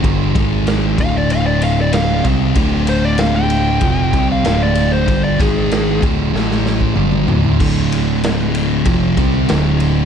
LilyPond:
<<
  \new Staff \with { instrumentName = "Lead electric guitar" } { \time 4/4 \key d \phrygian \tempo 4 = 95 r4. f''16 d''16 f''16 d''16 f''16 d''16 f''8 r8 | r8 c''16 d''16 f''16 g''4. f''8 d''8 c''16~ | c''16 d''16 gis'4 r2 r8 | r1 | }
  \new Staff \with { instrumentName = "Distorted electric guitar" } { \clef bass \time 4/4 \key d \phrygian <g, d g>8 <gis, dis gis>4 <d, a, d>2 <c g c'>8 | <d, a, d>2 <f, c f>8 <c g c'>8 <d, a, d>4 | <g, d g>8 <gis, dis gis>4 <d, a, d>8 <a, e a>4 <g, d g>8 <d, a, d>8 | <d, a, d>2 <f, c f>8 <c g c'>8 <d, a, d>4 | }
  \new Staff \with { instrumentName = "Distorted electric guitar" } { \clef bass \time 4/4 \key d \phrygian <g, d g>8 <gis, dis gis>4 <d, a, d>2 <c g c'>8 | <d, a, d>2 <f, c f>8 <c g c'>8 <d, a, d>4 | <g, d g>8 <gis, dis gis>4 <d, a, d>8 <a, e a>4 <g, d g>8 <d, a, d>8 | <d, a, d>2 <f, c f>8 <c g c'>8 <d, a, d>4 | }
  \new Staff \with { instrumentName = "Picked electric bass" } { \clef bass \time 4/4 \key d \phrygian g,,8 gis,,4 d,,2 c,8 | d,,2 f,,8 c,8 d,,4 | g,,8 gis,,4 d,,8 a,,4 g,,8 d,,8 | d,,2 f,,8 c,8 d,,4 | }
  \new DrumStaff \with { instrumentName = "Drums" } \drummode { \time 4/4 <bd cymr>8 <bd cymr>8 <cymr sn>8 <bd cymr>8 cymr8 cymr8 <cymr sn>8 <bd cymr>8 | <bd cymr>8 cymr8 <cymr sn>8 cymr8 <bd cymr>8 <bd cymr>8 <cymr sn>8 cymr8 | <bd cymr>8 <bd cymr sn>8 <cymr sn>8 <bd cymr>8 sn16 sn16 sn16 bd16 toml16 toml16 tomfh16 tomfh16 | <cymc bd>8 <cymr sn>8 <cymr sn>8 cymr8 <bd cymr>8 <bd cymr>8 <cymr sn>8 cymr8 | }
>>